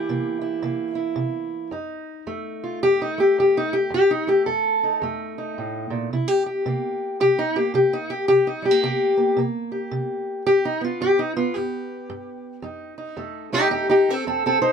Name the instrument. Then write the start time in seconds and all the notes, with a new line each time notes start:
steel-string acoustic guitar
Already playing: E3 E4 G4
0.09 C3 A#3
0.41 E4
0.62 C3 A#3
0.95 E4
1.16 C3
1.71 F2 D#4
2.27 F2 A3
2.64 F4
2.83 F2 G4
3.02 D#4
3.18 A3 G4
3.38 F2 G4
3.57 D#4
3.73 G4
3.90 F2 G4
4.11 D#4
4.27 A3 G4
4.46 F2 A4
4.83 D#4
5.02 F2 A3
5.38 D#4
5.58 A2
5.90 A#2
6.13 C3 E4
6.28 G4
6.46 G4
6.66 C3 A#3
7.20 C3 G4
7.39 D#4
7.56 A#3 G4
7.74 C3 G4
7.93 D#4
8.10 G4
8.28 C3 G4
8.47 D#4
8.62 G3 G4
8.71 A#3
8.83 C3 G4
9.17 A#3
9.37 C3 A#3
9.72 G4
9.91 C3
10.46 G2 G4
10.65 D#4
10.81 B3 F4
11.01 G2 G4
11.19 D#4
11.36 B3 F4
11.54 G2 G4
12.10 G2
12.62 F2 D#4
12.98 D#4
13.17 F2 A3
13.52 A3 D#4 G4
13.71 F2 D#4 G4
13.89 D#4 G4
14.09 A3 C4 A4
14.27 F2 C4 A4
14.46 C4 A4
14.62 D#4 C5